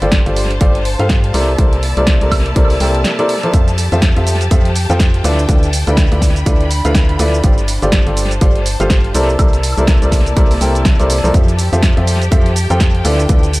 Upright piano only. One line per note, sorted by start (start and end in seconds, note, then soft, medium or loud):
0.02 0.22 G3 medium
0.02 0.22 F4 medium
0.02 0.22 G4 medium
0.02 0.22 A4 medium
0.02 0.22 C5 medium
0.02 0.22 D5 medium
0.26 0.49 G3 medium
0.26 0.49 F4 medium
0.26 0.49 G4 medium
0.26 0.49 A4 medium
0.26 0.49 C5 medium
0.26 0.49 D5 medium
0.61 0.77 G3 medium
0.61 0.77 F4 medium
0.61 0.77 G4 medium
0.61 0.77 A4 medium
0.61 0.77 C5 medium
0.61 0.77 D5 loud
0.99 1.32 G3 medium
0.99 1.32 F4 medium
0.99 1.32 G4 medium
0.99 1.32 A4 medium
0.99 1.32 C5 medium
0.99 1.32 F5 medium
1.34 1.50 C3 medium
1.34 1.50 E4 medium
1.34 1.50 A4 medium
1.34 1.50 A#4 medium
1.34 1.50 C5 medium
1.34 1.50 D5 loud
1.58 1.74 C3 medium
1.58 1.74 E4 medium
1.58 1.74 A4 medium
1.58 1.74 A#4 medium
1.58 1.74 C5 medium
1.58 1.74 D5 medium
1.97 2.17 C3 medium
1.97 2.17 E4 medium
1.97 2.17 A4 medium
1.97 2.17 A#4 medium
1.97 2.17 C5 medium
1.97 2.17 D5 medium
2.22 2.44 C3 medium
2.22 2.44 E4 medium
2.22 2.44 A4 medium
2.22 2.44 A#4 medium
2.22 2.44 C5 medium
2.22 2.44 D5 medium
2.56 2.72 C3 medium
2.56 2.72 E4 medium
2.56 2.72 A4 medium
2.56 2.72 A#4 medium
2.56 2.72 C5 medium
2.56 2.72 D5 loud
2.80 3.16 C3 medium
2.80 3.16 E4 medium
2.80 3.16 A4 medium
2.80 3.16 A#4 medium
2.80 3.16 C5 medium
2.80 3.16 G5 medium
3.19 3.32 C3 medium
3.19 3.32 E4 medium
3.19 3.32 A4 medium
3.19 3.32 A#4 medium
3.19 3.32 C5 medium
3.19 3.32 D5 loud
3.43 3.51 F3 medium
3.43 3.51 E4 medium
3.43 3.51 A4 medium
3.43 3.51 A#4 medium
3.43 3.51 C5 medium
3.43 3.51 D5 medium
3.54 3.70 F3 medium
3.54 3.70 F4 medium
3.54 3.70 G4 medium
3.54 3.70 A4 medium
3.54 3.70 C5 medium
3.54 3.70 E5 medium
3.92 4.12 F3 medium
3.92 4.12 F4 medium
3.92 4.12 G4 medium
3.92 4.12 A4 medium
3.92 4.12 C5 medium
3.92 4.12 E5 medium
4.17 4.39 F3 medium
4.17 4.39 F4 medium
4.17 4.39 G4 medium
4.17 4.39 A4 medium
4.17 4.39 C5 medium
4.17 4.39 E5 medium
4.51 4.67 F3 medium
4.51 4.67 F4 medium
4.51 4.67 G4 medium
4.51 4.67 A4 medium
4.51 4.67 C5 medium
4.51 4.67 E5 loud
4.90 5.22 F3 medium
4.90 5.22 F4 medium
4.90 5.22 G4 medium
4.90 5.22 A4 medium
4.90 5.22 C5 medium
4.90 5.22 G5 medium
5.24 5.40 D3 medium
5.24 5.40 E4 medium
5.24 5.40 F4 medium
5.24 5.40 A4 medium
5.24 5.40 B4 medium
5.24 5.40 D5 loud
5.49 5.65 D3 medium
5.49 5.65 E4 medium
5.49 5.65 F4 medium
5.49 5.65 A4 medium
5.49 5.65 B4 medium
5.49 5.65 D5 medium
5.87 6.07 D3 medium
5.87 6.07 E4 medium
5.87 6.07 F4 medium
5.87 6.07 A4 medium
5.87 6.07 B4 medium
5.87 6.07 D5 medium
6.12 6.34 D3 medium
6.12 6.34 E4 medium
6.12 6.34 F4 medium
6.12 6.34 A4 medium
6.12 6.34 B4 medium
6.12 6.34 D5 medium
6.46 6.62 D3 medium
6.46 6.62 E4 medium
6.46 6.62 F4 medium
6.46 6.62 A4 medium
6.46 6.62 B4 medium
6.46 6.62 D5 loud
6.85 7.17 D3 medium
6.85 7.17 E4 medium
6.85 7.17 F4 medium
6.85 7.17 A4 medium
6.85 7.17 B4 medium
6.85 7.17 F5 medium
7.19 7.35 E4 medium
7.19 7.35 F4 medium
7.19 7.35 A4 medium
7.19 7.35 B4 medium
7.19 7.35 D5 loud
7.44 7.60 G3 medium
7.44 7.60 F4 medium
7.44 7.60 G4 medium
7.44 7.60 A4 medium
7.44 7.60 C5 medium
7.44 7.60 D5 medium
7.82 8.03 G3 medium
7.82 8.03 F4 medium
7.82 8.03 G4 medium
7.82 8.03 A4 medium
7.82 8.03 C5 medium
7.82 8.03 D5 medium
8.07 8.29 G3 medium
8.07 8.30 F4 medium
8.07 8.30 G4 medium
8.07 8.29 A4 medium
8.07 8.30 C5 medium
8.07 8.29 D5 medium
8.41 8.57 G3 medium
8.41 8.57 F4 medium
8.41 8.57 G4 medium
8.41 8.57 A4 medium
8.41 8.57 C5 medium
8.41 8.57 D5 loud
8.80 9.12 G3 medium
8.80 9.12 F4 medium
8.80 9.12 G4 medium
8.80 9.12 A4 medium
8.80 9.12 C5 medium
8.80 9.12 F5 medium
9.15 9.31 C3 medium
9.15 9.31 E4 medium
9.15 9.31 A4 medium
9.15 9.31 A#4 medium
9.15 9.31 C5 medium
9.15 9.31 D5 loud
9.39 9.55 C3 medium
9.39 9.55 E4 medium
9.39 9.55 A4 medium
9.39 9.55 A#4 medium
9.39 9.55 C5 medium
9.39 9.55 D5 medium
9.78 9.98 C3 medium
9.78 9.98 E4 medium
9.78 9.98 A4 medium
9.78 9.98 A#4 medium
9.78 9.98 C5 medium
9.78 9.98 D5 medium
10.02 10.25 C3 medium
10.02 10.25 E4 medium
10.02 10.25 A4 medium
10.02 10.25 A#4 medium
10.02 10.25 C5 medium
10.02 10.25 D5 medium
10.37 10.53 C3 medium
10.37 10.53 E4 medium
10.37 10.53 A4 medium
10.37 10.53 A#4 medium
10.37 10.53 C5 medium
10.37 10.53 D5 loud
10.61 10.96 C3 medium
10.61 10.96 E4 medium
10.61 10.96 A4 medium
10.61 10.96 A#4 medium
10.61 10.96 C5 medium
10.61 10.96 G5 medium
11.00 11.12 C3 loud
11.00 11.12 E4 medium
11.00 11.12 A4 medium
11.00 11.12 A#4 medium
11.00 11.12 C5 medium
11.00 11.12 D5 loud
11.24 11.32 F3 medium
11.24 11.32 E4 medium
11.24 11.32 A4 medium
11.24 11.32 A#4 medium
11.24 11.32 C5 medium
11.24 11.32 D5 medium
11.34 11.50 F3 medium
11.34 11.50 F4 medium
11.34 11.50 G4 medium
11.34 11.50 A4 medium
11.34 11.50 C5 medium
11.34 11.50 E5 medium
11.73 11.93 F3 medium
11.73 11.93 F4 medium
11.73 11.93 G4 medium
11.73 11.93 A4 medium
11.73 11.93 C5 medium
11.73 11.93 E5 medium
11.97 12.20 F3 medium
11.97 12.20 F4 medium
11.97 12.20 G4 medium
11.97 12.20 A4 medium
11.97 12.20 C5 medium
11.97 12.20 E5 medium
12.32 12.48 F3 medium
12.32 12.48 F4 medium
12.32 12.48 G4 medium
12.32 12.48 A4 medium
12.32 12.48 C5 medium
12.32 12.48 E5 loud
12.70 13.02 F3 medium
12.70 13.02 F4 medium
12.70 13.02 G4 medium
12.70 13.02 A4 medium
12.70 13.02 C5 medium
12.70 13.02 G5 loud
13.05 13.21 D3 medium
13.05 13.21 E4 medium
13.05 13.21 F4 medium
13.05 13.21 A4 medium
13.05 13.21 B4 medium
13.05 13.21 D5 loud
13.29 13.45 D3 medium
13.29 13.45 E4 medium
13.29 13.45 F4 medium
13.29 13.45 A4 medium
13.29 13.45 B4 medium
13.29 13.45 D5 medium